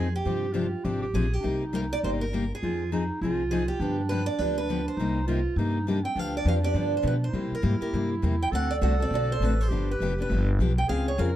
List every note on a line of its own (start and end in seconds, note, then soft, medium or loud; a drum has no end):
0.00 0.21 F2 medium
0.00 0.15 G#4 medium
0.16 0.70 G4 medium
0.23 0.73 G2 medium
0.23 0.45 C3 medium
0.23 0.45 F3 medium
0.23 0.46 C4 medium
0.23 0.46 D4 medium
0.23 0.54 G4 medium
0.23 0.46 G4 medium
0.52 0.65 C3 medium
0.52 0.66 F3 medium
0.52 0.65 C4 medium
0.52 0.66 D4 medium
0.52 0.85 F4 medium
0.52 0.66 G4 medium
0.84 1.10 G#1 medium
0.84 1.04 C3 medium
0.84 1.04 F3 medium
0.84 1.04 C4 medium
0.84 1.04 D4 medium
0.84 1.02 G4 medium
0.84 1.05 G4 medium
1.02 1.30 G4 medium
1.14 1.39 A#1 medium
1.14 1.25 C3 medium
1.14 1.25 F3 medium
1.14 1.25 C4 medium
1.14 1.26 D4 medium
1.14 1.26 G4 medium
1.14 1.33 G#4 medium
1.33 1.62 G4 medium
1.40 1.63 C3 medium
1.40 1.63 G3 medium
1.40 1.63 A#3 medium
1.40 1.44 D4 soft
1.40 2.35 D#4 medium
1.40 1.63 D#4 medium
1.44 1.91 C2 medium
1.44 1.64 G4 medium
1.73 1.84 C3 medium
1.73 1.84 G3 medium
1.73 1.84 A#3 medium
1.73 1.84 D#4 loud
1.73 1.84 G4 loud
1.73 1.80 A#4 medium
1.93 1.98 D5 loud
2.03 2.50 G1 medium
2.03 2.23 C3 medium
2.03 2.23 G3 medium
2.03 2.23 A#3 medium
2.03 2.24 D#4 medium
2.03 2.24 G4 medium
2.03 2.09 C5 medium
2.21 2.51 A#4 medium
2.33 2.44 C3 medium
2.33 2.43 G3 medium
2.33 2.44 A#3 loud
2.33 2.44 D#4 medium
2.33 2.44 G4 medium
2.55 3.08 G#4 medium
2.61 3.10 F2 medium
2.61 2.82 F3 medium
2.61 2.82 C4 medium
2.61 2.82 D#4 medium
2.61 2.89 F4 medium
2.61 2.82 G#4 medium
2.92 3.03 F3 medium
2.92 3.03 C4 medium
2.92 3.19 D#4 medium
2.92 3.03 D#4 medium
2.92 3.03 G#4 medium
3.21 3.69 C2 medium
3.21 3.41 F3 medium
3.21 3.42 C4 medium
3.21 3.42 D#4 medium
3.21 3.82 F4 loud
3.21 3.42 G#4 medium
3.51 3.62 F3 medium
3.51 3.62 C4 medium
3.51 3.62 D#4 loud
3.51 3.67 G#4 medium
3.51 3.62 G#4 loud
3.68 3.96 G4 medium
3.80 4.27 G2 medium
3.80 4.00 D3 medium
3.80 4.01 F3 medium
3.80 4.00 B3 medium
3.80 4.99 D4 medium
3.80 4.01 D4 medium
3.80 4.01 G4 medium
4.09 4.21 D3 loud
4.09 4.21 F3 medium
4.09 4.22 B3 medium
4.09 4.22 D4 loud
4.09 4.22 G4 medium
4.09 4.26 B4 medium
4.26 4.39 D5 loud
4.39 4.86 D2 medium
4.39 4.59 D3 medium
4.39 4.59 F3 medium
4.39 4.60 B3 medium
4.39 4.60 D4 medium
4.39 4.60 G4 medium
4.39 4.56 B4 loud
4.58 4.88 B4 loud
4.69 4.80 D3 medium
4.69 4.80 F3 medium
4.69 4.80 B3 medium
4.69 4.80 D4 loud
4.69 4.81 G4 medium
4.88 5.42 C5 medium
4.97 5.45 C2 medium
4.97 5.18 C3 medium
4.97 5.19 G3 medium
4.97 5.19 A#3 medium
4.97 5.27 D#4 medium
4.97 5.19 D#4 medium
4.97 5.19 G4 medium
5.27 5.39 C3 medium
5.27 5.39 G3 medium
5.27 5.39 A#3 medium
5.27 5.39 D#4 loud
5.27 5.60 F4 medium
5.27 5.39 G4 medium
5.56 6.04 G2 medium
5.56 5.77 C3 medium
5.56 5.78 G3 medium
5.56 5.78 A#3 medium
5.56 5.87 D#4 medium
5.56 5.78 D#4 medium
5.56 5.78 G4 medium
5.87 5.98 C3 medium
5.87 5.98 G3 medium
5.87 5.99 A#3 medium
5.87 6.05 D4 medium
5.87 5.98 D#4 medium
5.87 5.99 G4 medium
6.04 6.15 C4 medium
6.04 6.19 G5 medium
6.15 6.45 D2 medium
6.15 6.36 D3 medium
6.15 6.36 F3 medium
6.15 6.36 B3 medium
6.15 7.30 D4 medium
6.15 6.36 D4 medium
6.15 6.37 G4 medium
6.15 6.36 F5 loud
6.37 6.48 D5 medium
6.45 6.74 F2 medium
6.45 6.57 D3 medium
6.45 6.57 F3 medium
6.45 6.57 B3 medium
6.45 6.58 D4 medium
6.45 6.58 G4 loud
6.45 6.53 F5 medium
6.63 6.73 B3 soft
6.63 6.75 D4 medium
6.63 6.75 G4 medium
6.63 6.94 D5 loud
6.74 7.03 G2 medium
6.74 6.94 D3 medium
6.74 6.95 F3 medium
6.74 6.95 B3 medium
6.74 6.95 D4 medium
6.74 6.95 G4 medium
6.97 7.06 C5 medium
7.02 7.33 B2 medium
7.02 7.15 D3 medium
7.02 7.15 F3 medium
7.02 7.15 B3 loud
7.02 7.15 D4 medium
7.02 7.16 G4 medium
7.07 7.12 B4 medium
7.24 7.54 C5 medium
7.28 7.35 D#4 medium
7.33 7.51 C3 medium
7.33 7.54 C3 medium
7.33 7.54 G3 medium
7.33 7.54 A#3 medium
7.33 8.53 E4 medium
7.33 7.54 E4 medium
7.33 7.54 G4 medium
7.52 7.81 A#4 medium
7.52 muted upright bass stroke soft
7.62 7.80 G#2 loud
7.62 7.74 C3 medium
7.62 7.74 G3 medium
7.62 7.75 A#3 medium
7.62 7.75 E4 medium
7.62 7.75 G4 loud
7.81 7.93 A#3 medium
7.81 7.93 E4 medium
7.81 7.93 G4 medium
7.81 8.10 A#4 medium
7.81 muted upright bass stroke soft
7.93 8.22 G2 medium
7.93 8.13 C3 medium
7.93 8.13 G3 medium
7.93 8.14 A#3 medium
7.93 8.14 E4 medium
7.93 8.14 G4 medium
8.22 8.52 E2 medium
8.22 8.34 C3 medium
8.22 8.34 G3 loud
8.22 8.34 A#3 loud
8.22 8.35 E4 medium
8.22 8.35 G4 medium
8.42 8.47 G5 medium
8.52 8.81 D2 medium
8.52 8.73 D3 medium
8.52 8.73 A3 medium
8.52 8.73 C4 medium
8.52 8.73 F#4 medium
8.52 9.70 A4 loud
8.52 8.73 A4 medium
8.52 8.71 F#5 loud
8.71 8.76 D5 medium
8.81 9.10 C2 loud
8.81 8.93 D3 medium
8.81 8.93 A3 loud
8.81 8.93 C4 medium
8.81 8.94 F#4 loud
8.81 8.93 A4 medium
8.81 9.01 F#5 medium
9.00 9.12 C4 medium
9.00 9.12 F#4 medium
9.00 9.11 A4 medium
9.00 9.14 D5 medium
9.10 9.40 B1 loud
9.10 9.32 D3 medium
9.10 9.32 A3 medium
9.10 9.32 C4 medium
9.10 9.32 F#4 medium
9.10 9.33 A4 medium
9.15 9.32 D5 medium
9.32 9.44 C5 medium
9.40 9.70 A1 medium
9.40 9.53 D3 medium
9.40 9.53 A3 medium
9.40 9.53 C4 medium
9.40 9.53 F#4 medium
9.40 9.53 A4 medium
9.44 9.61 B4 medium
9.61 9.90 C5 medium
9.69 10.00 G1 medium
9.69 9.91 D3 medium
9.69 9.91 F3 medium
9.69 9.91 B3 medium
9.69 9.91 D4 medium
9.69 10.49 G4 medium
9.69 9.91 G4 medium
9.91 10.21 B4 medium
10.00 10.29 F1 medium
10.00 10.12 D3 medium
10.00 10.12 F3 medium
10.00 10.12 B3 loud
10.00 10.12 D4 loud
10.00 10.13 G4 loud
10.18 10.30 B3 soft
10.18 10.30 D4 medium
10.18 10.30 G4 medium
10.18 10.48 B4 medium
10.30 10.58 G1 medium
10.30 10.50 D3 medium
10.30 10.50 F3 medium
10.30 10.50 B3 medium
10.30 10.50 D4 medium
10.30 10.51 G4 medium
10.59 10.88 B1 medium
10.59 10.71 D3 medium
10.59 10.71 F3 medium
10.59 10.71 B3 medium
10.59 10.71 D4 medium
10.59 10.71 G4 loud
10.78 10.89 G5 medium
10.88 11.18 C#2 medium
10.88 11.09 C#3 medium
10.88 11.09 G#3 medium
10.88 11.09 C4 medium
10.88 11.09 F4 medium
10.88 11.16 G#4 medium
10.88 11.10 G#4 medium
10.88 11.06 F5 loud
11.08 11.19 C#5 medium
11.18 11.36 F2 medium
11.18 11.29 C#3 medium
11.18 11.29 G#3 loud
11.18 11.29 C4 loud
11.18 11.30 F4 medium
11.18 11.30 G#4 loud
11.18 11.36 A#4 loud
11.18 11.24 F5 medium